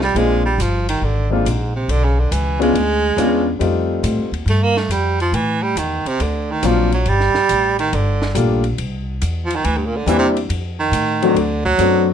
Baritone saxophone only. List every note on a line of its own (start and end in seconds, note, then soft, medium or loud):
0.03 0.18 G3 medium
0.17 0.44 G#3 loud
0.45 0.62 G3 medium
0.61 0.88 F3 medium
0.89 1.05 D#3 medium
1.04 1.31 D3 medium
1.32 1.49 F2 medium
1.47 1.75 G#2 medium
1.76 1.92 C3 medium
1.90 2.06 D3 loud
2.04 2.21 C#3 medium
2.19 2.33 D3 medium
2.32 2.61 E3 medium
2.62 3.58 G#3 loud
4.49 4.65 A3 medium
4.63 4.79 A#3 loud
4.77 4.93 A3 medium
4.92 5.20 G3 medium
5.21 5.36 F3 medium
5.35 5.64 E3 medium
5.62 5.79 G3 loud
5.78 6.09 D#3 medium
6.07 6.23 C3 medium
6.22 6.53 D3 medium
6.51 6.68 D#3 medium
6.66 6.93 F3 medium
6.94 7.10 F#3 medium
7.09 7.79 G3 loud
7.79 7.96 D#3 medium
7.94 8.36 D3 medium
9.45 9.57 F3 medium
9.55 9.66 D#3 medium
9.65 9.79 E3 loud
9.77 9.87 G2 medium
9.86 9.98 A#2 medium
9.96 10.09 D3 medium
10.07 10.18 E3 loud
10.19 10.28 C3 medium
10.80 11.39 D#3 medium
11.37 11.65 D3 medium
11.65 12.06 F#3 loud